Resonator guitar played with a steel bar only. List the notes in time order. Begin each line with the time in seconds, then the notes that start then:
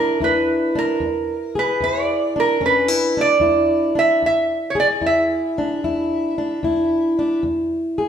Already playing: A#4
0.24 B4
0.79 A#4
1.59 B4
1.84 D5
2.40 A#4
2.66 B4
3.21 D5
3.99 E5
4.26 E5
4.70 C#5
4.80 D5
5.06 E5